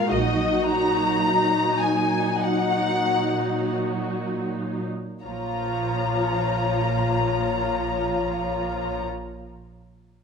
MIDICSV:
0, 0, Header, 1, 6, 480
1, 0, Start_track
1, 0, Key_signature, -5, "minor"
1, 0, Tempo, 1149425
1, 50, Time_signature, 4, 2, 24, 8
1, 1010, Tempo, 1321586
1, 1490, Tempo, 1500000
1, 1970, Tempo, 1379310
1, 3709, End_track
2, 0, Start_track
2, 0, Title_t, "Violin section"
2, 0, Program_c, 0, 48
2, 0, Note_on_c, 0, 77, 60
2, 43, Note_off_c, 0, 77, 0
2, 49, Note_on_c, 0, 75, 56
2, 285, Note_on_c, 0, 82, 65
2, 288, Note_off_c, 0, 75, 0
2, 747, Note_off_c, 0, 82, 0
2, 760, Note_on_c, 0, 80, 54
2, 1009, Note_on_c, 0, 78, 61
2, 1010, Note_off_c, 0, 80, 0
2, 1489, Note_off_c, 0, 78, 0
2, 1970, Note_on_c, 0, 82, 37
2, 3285, Note_off_c, 0, 82, 0
2, 3709, End_track
3, 0, Start_track
3, 0, Title_t, "Violin section"
3, 0, Program_c, 1, 48
3, 0, Note_on_c, 1, 70, 58
3, 51, Note_off_c, 1, 70, 0
3, 53, Note_on_c, 1, 66, 46
3, 513, Note_off_c, 1, 66, 0
3, 526, Note_on_c, 1, 63, 43
3, 1491, Note_off_c, 1, 63, 0
3, 1494, Note_on_c, 1, 66, 34
3, 1732, Note_off_c, 1, 66, 0
3, 1970, Note_on_c, 1, 65, 30
3, 1971, Note_on_c, 1, 73, 30
3, 3285, Note_off_c, 1, 65, 0
3, 3286, Note_off_c, 1, 73, 0
3, 3709, End_track
4, 0, Start_track
4, 0, Title_t, "Viola section"
4, 0, Program_c, 2, 48
4, 0, Note_on_c, 2, 56, 47
4, 0, Note_on_c, 2, 65, 47
4, 43, Note_off_c, 2, 56, 0
4, 43, Note_off_c, 2, 65, 0
4, 54, Note_on_c, 2, 63, 49
4, 55, Note_on_c, 2, 54, 49
4, 995, Note_off_c, 2, 63, 0
4, 1003, Note_off_c, 2, 54, 0
4, 1008, Note_on_c, 2, 54, 46
4, 1011, Note_on_c, 2, 63, 44
4, 1849, Note_off_c, 2, 54, 0
4, 1850, Note_off_c, 2, 63, 0
4, 1972, Note_on_c, 2, 53, 35
4, 1973, Note_on_c, 2, 65, 35
4, 3287, Note_off_c, 2, 53, 0
4, 3288, Note_off_c, 2, 65, 0
4, 3709, End_track
5, 0, Start_track
5, 0, Title_t, "Cello section"
5, 0, Program_c, 3, 48
5, 52, Note_on_c, 3, 46, 40
5, 1850, Note_off_c, 3, 46, 0
5, 1973, Note_on_c, 3, 46, 29
5, 3288, Note_off_c, 3, 46, 0
5, 3709, End_track
6, 0, Start_track
6, 0, Title_t, "Double bass section"
6, 0, Program_c, 4, 48
6, 53, Note_on_c, 4, 34, 41
6, 506, Note_off_c, 4, 34, 0
6, 1970, Note_on_c, 4, 34, 31
6, 3285, Note_off_c, 4, 34, 0
6, 3709, End_track
0, 0, End_of_file